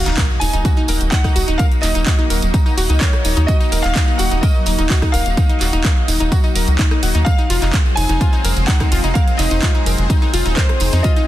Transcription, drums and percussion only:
0.06 clap soft
0.06 closed hi-hat medium
0.06 tambourine soft
0.18 kick loud
0.18 clap loud
0.18 closed hi-hat medium
0.18 tambourine soft
0.30 tambourine soft
0.41 open hi-hat loud
0.41 tambourine medium
0.54 closed hi-hat medium
0.54 tambourine soft
0.65 kick loud
0.65 closed hi-hat medium
0.65 tambourine medium
0.77 tambourine soft
0.88 open hi-hat loud
0.88 tambourine medium
1.01 closed hi-hat medium
1.01 tambourine soft
1.12 kick loud
1.12 clap loud
1.12 closed hi-hat medium
1.12 tambourine medium
1.24 kick medium
1.24 cross-stick medium
1.24 closed hi-hat soft
1.24 tambourine soft
1.36 open hi-hat loud
1.36 tambourine loud
1.48 closed hi-hat medium
1.48 tambourine soft
1.59 kick loud
1.59 closed hi-hat medium
1.59 tambourine medium
1.72 closed hi-hat soft
1.72 tambourine soft
1.83 clap soft
1.83 open hi-hat loud
1.83 tambourine loud
1.95 closed hi-hat medium
1.95 tambourine soft
2.06 kick loud
2.06 clap loud
2.06 closed hi-hat medium
2.06 tambourine medium
2.19 tambourine soft
2.30 open hi-hat loud
2.30 tambourine medium
2.42 closed hi-hat medium
2.42 tambourine soft
2.54 kick loud
2.54 closed hi-hat medium
2.54 tambourine medium
2.66 tambourine soft
2.78 open hi-hat loud
2.78 tambourine medium
2.89 closed hi-hat medium
2.89 tambourine soft
3.01 kick loud
3.01 clap loud
3.01 closed hi-hat medium
3.01 tambourine medium
3.13 cross-stick medium
3.13 closed hi-hat soft
3.13 tambourine soft
3.25 open hi-hat loud
3.25 tambourine medium
3.37 closed hi-hat medium
3.37 tambourine soft
3.48 kick loud
3.48 closed hi-hat medium
3.48 tambourine medium
3.61 closed hi-hat soft
3.61 tambourine soft
3.72 open hi-hat loud
3.72 tambourine loud
3.84 clap soft
3.84 closed hi-hat medium
3.84 tambourine soft
3.95 kick loud
3.95 clap loud
3.95 closed hi-hat medium
3.95 tambourine medium
4.08 tambourine soft
4.19 open hi-hat loud
4.19 tambourine medium
4.31 closed hi-hat medium
4.31 tambourine soft
4.43 kick loud
4.43 closed hi-hat medium
4.43 tambourine medium
4.54 tambourine soft
4.66 open hi-hat loud
4.66 tambourine loud
4.79 closed hi-hat medium
4.79 tambourine soft
4.90 kick loud
4.90 clap loud
4.90 closed hi-hat medium
4.90 tambourine medium
5.02 kick medium
5.02 cross-stick medium
5.02 closed hi-hat soft
5.02 tambourine soft
5.14 open hi-hat loud
5.14 tambourine loud
5.26 closed hi-hat medium
5.26 tambourine soft
5.37 kick loud
5.37 closed hi-hat medium
5.37 tambourine medium
5.50 closed hi-hat soft
5.50 tambourine soft
5.61 clap soft
5.61 open hi-hat loud
5.61 tambourine loud
5.73 closed hi-hat soft
5.73 tambourine soft
5.84 kick loud
5.84 clap loud
5.84 closed hi-hat medium
5.84 tambourine soft
5.96 tambourine soft
6.08 open hi-hat loud
6.08 tambourine loud
6.20 closed hi-hat soft
6.20 tambourine soft
6.32 kick loud
6.32 closed hi-hat medium
6.32 tambourine medium
6.44 tambourine soft
6.55 open hi-hat loud
6.55 tambourine loud
6.68 closed hi-hat soft
6.68 tambourine soft
6.79 kick loud
6.79 clap loud
6.79 closed hi-hat medium
6.79 tambourine medium
6.91 cross-stick medium
6.91 closed hi-hat soft
6.91 tambourine soft
7.03 open hi-hat loud
7.03 tambourine loud
7.15 closed hi-hat medium
7.15 tambourine soft
7.26 kick loud
7.26 closed hi-hat medium
7.26 tambourine medium
7.39 closed hi-hat soft
7.39 tambourine soft
7.50 open hi-hat loud
7.50 ride medium
7.50 tambourine medium
7.62 clap soft
7.62 closed hi-hat soft
7.62 tambourine soft
7.73 kick loud
7.73 clap loud
7.73 closed hi-hat medium
7.73 tambourine medium
7.86 tambourine soft
7.97 open hi-hat loud
7.97 ride medium
7.97 tambourine medium
8.09 closed hi-hat medium
8.09 tambourine soft
8.21 kick loud
8.21 closed hi-hat medium
8.21 tambourine medium
8.33 tambourine soft
8.45 open hi-hat loud
8.45 ride medium
8.45 tambourine loud
8.57 closed hi-hat soft
8.57 tambourine soft
8.68 kick loud
8.68 clap loud
8.68 closed hi-hat medium
8.68 tambourine medium
8.80 kick medium
8.80 cross-stick medium
8.80 closed hi-hat soft
8.80 tambourine soft
8.92 open hi-hat loud
8.92 ride medium
8.92 tambourine loud
9.04 closed hi-hat medium
9.04 tambourine soft
9.15 kick loud
9.15 closed hi-hat medium
9.15 tambourine medium
9.28 closed hi-hat soft
9.28 tambourine soft
9.39 clap soft
9.39 open hi-hat loud
9.39 ride medium
9.39 tambourine medium
9.51 closed hi-hat medium
9.51 tambourine soft
9.62 kick loud
9.62 clap loud
9.62 closed hi-hat medium
9.62 tambourine soft
9.74 tambourine soft
9.86 open hi-hat loud
9.86 ride medium
9.86 tambourine medium
9.98 closed hi-hat medium
9.98 tambourine soft
10.10 kick loud
10.10 closed hi-hat medium
10.10 tambourine soft
10.22 tambourine soft
10.34 open hi-hat loud
10.34 ride medium
10.34 tambourine medium
10.46 closed hi-hat medium
10.46 tambourine soft
10.57 kick loud
10.57 clap loud
10.57 closed hi-hat medium
10.57 tambourine soft
10.69 cross-stick medium
10.69 closed hi-hat soft
10.69 tambourine soft
10.80 open hi-hat loud
10.80 ride medium
10.80 tambourine medium
10.93 closed hi-hat medium
10.93 tambourine soft
11.04 kick loud
11.04 closed hi-hat medium
11.04 tambourine soft
11.16 closed hi-hat soft
11.16 tambourine soft

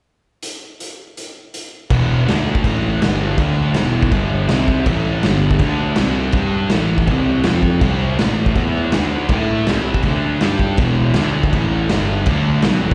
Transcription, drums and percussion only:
0.43 closed hi-hat medium
0.80 closed hi-hat medium
1.17 closed hi-hat medium
1.54 closed hi-hat medium
1.90 kick loud
1.90 crash medium
2.28 snare loud
2.28 crash medium
2.55 kick medium
2.64 kick medium
2.64 crash medium
3.02 snare loud
3.02 crash medium
3.38 kick loud
3.38 crash medium
3.74 snare loud
3.74 crash medium
4.03 kick medium
4.11 kick medium
4.11 crash medium
4.49 snare loud
4.49 crash medium
4.68 kick medium
4.86 kick loud
4.86 crash medium
5.23 snare loud
5.23 crash medium
5.51 kick medium
5.59 kick loud
5.59 crash medium
5.96 snare loud
5.96 crash medium
6.32 kick loud
6.32 crash medium
6.69 snare loud
6.69 crash medium
6.98 kick medium
7.07 kick loud
7.07 crash medium
7.44 snare loud
7.44 crash medium
7.63 kick medium
7.81 kick loud
7.81 crash medium
8.19 snare loud
8.19 crash medium
8.46 kick medium
8.56 kick medium
8.56 crash medium
8.92 snare loud
8.92 crash medium
9.29 kick loud
9.29 crash medium
9.67 snare loud
9.67 crash medium
9.94 kick loud
10.03 kick medium
10.03 crash medium
10.41 snare loud
10.41 crash medium
10.59 kick medium
10.77 kick loud
10.77 crash medium
11.14 snare loud
11.14 crash medium
11.44 kick loud
11.53 kick loud
11.53 crash medium
11.89 snare loud
11.89 crash medium
12.26 kick loud
12.26 crash medium
12.62 snare loud
12.62 crash medium

